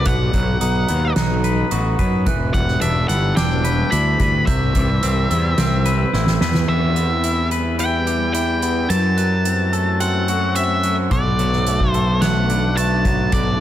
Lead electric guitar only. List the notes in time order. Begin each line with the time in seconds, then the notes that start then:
0.07 F#5
2.54 F#5
2.81 E5
3.08 F#5
3.36 G5
3.91 B5
4.46 E5
6.69 E5
7.80 G5
8.34 G5
8.90 A5
10.01 F#5
10.56 E5
11.12 D5
11.91 C5
12.21 F#5
12.77 A5
13.33 D5